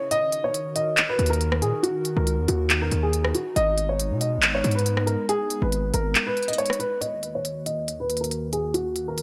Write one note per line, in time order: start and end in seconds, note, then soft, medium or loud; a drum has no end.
0.11 3.53 D#3 medium
0.11 6.98 D#4 medium
0.11 3.53 F#4 medium
0.11 3.53 A#4 loud
0.11 0.42 D#5 loud
0.11 closed hi-hat medium
0.32 closed hi-hat medium
0.44 0.74 C#5 medium
0.54 closed hi-hat medium
0.76 1.07 D#5 medium
0.76 closed hi-hat medium
0.97 clap loud
0.97 closed hi-hat medium
1.09 1.27 B4 medium
1.19 1.63 D#2 loud
1.19 closed hi-hat medium
1.26 1.60 A#4 medium
1.26 closed hi-hat medium
1.33 closed hi-hat medium
1.41 closed hi-hat medium
1.52 cross-stick medium
1.62 1.73 A#2 loud
1.62 1.80 G#4 medium
1.62 closed hi-hat medium
1.83 2.14 F#4 loud
1.83 closed hi-hat medium
2.05 closed hi-hat medium
2.17 2.40 C#2 loud
2.17 2.46 A#4 medium
2.27 closed hi-hat medium
2.38 2.48 E2 loud
2.48 2.83 D#2 loud
2.48 2.79 F#4 medium
2.48 closed hi-hat medium
2.70 clap loud
2.70 closed hi-hat medium
2.81 2.91 E2 loud
2.81 3.00 A#4 medium
2.91 3.33 D#2 loud
2.91 closed hi-hat medium
3.03 3.33 G#4 medium
3.13 closed hi-hat medium
3.24 cross-stick medium
3.35 3.53 F#4 medium
3.35 closed hi-hat medium
3.56 4.12 G#1 loud
3.56 6.98 G#3 medium
3.56 6.98 B3 medium
3.56 3.87 D#5 loud
3.56 closed hi-hat medium
3.78 closed hi-hat medium
3.89 4.19 C#5 medium
4.00 closed hi-hat medium
4.11 4.39 B2 loud
4.21 4.52 D#5 medium
4.21 closed hi-hat medium
4.37 4.63 G#1 loud
4.43 clap loud
4.43 closed hi-hat medium
4.55 4.73 C#5 medium
4.64 5.17 G#2 loud
4.64 closed hi-hat medium
4.71 5.05 B4 medium
4.71 closed hi-hat medium
4.79 closed hi-hat medium
4.86 closed hi-hat medium
4.97 cross-stick medium
5.07 5.25 A#4 medium
5.07 closed hi-hat medium
5.29 5.60 G#4 loud
5.29 closed hi-hat medium
5.50 closed hi-hat medium
5.62 5.92 G#1 loud
5.62 5.92 B4 medium
5.72 closed hi-hat medium
5.94 6.15 G#1 loud
5.94 6.25 A#4 medium
5.94 closed hi-hat medium
6.15 clap loud
6.15 closed hi-hat medium
6.27 6.45 B4 medium
6.37 closed hi-hat soft
6.43 closed hi-hat medium
6.48 6.57 D#5 medium
6.48 closed hi-hat medium
6.53 closed hi-hat medium
6.58 6.77 C#5 medium
6.58 closed hi-hat medium
6.66 closed hi-hat medium
6.70 cross-stick medium
6.70 closed hi-hat medium
6.79 6.98 B4 medium
6.79 closed hi-hat medium
7.01 9.22 D#2 medium
7.01 9.22 D#3 medium
7.01 9.22 A#3 medium
7.01 9.22 F#4 medium
7.01 7.32 D#5 loud
7.01 closed hi-hat medium
7.23 closed hi-hat medium
7.35 7.65 C#5 medium
7.45 closed hi-hat medium
7.66 7.97 D#5 medium
7.66 closed hi-hat medium
7.88 closed hi-hat medium
8.00 8.18 B4 medium
8.10 closed hi-hat medium
8.17 8.51 A#4 medium
8.17 closed hi-hat medium
8.24 closed hi-hat medium
8.31 closed hi-hat medium
8.53 8.71 G#4 medium
8.53 closed hi-hat medium
8.74 9.05 F#4 loud
8.74 closed hi-hat medium
8.96 closed hi-hat medium
9.08 9.22 A#4 medium
9.18 closed hi-hat medium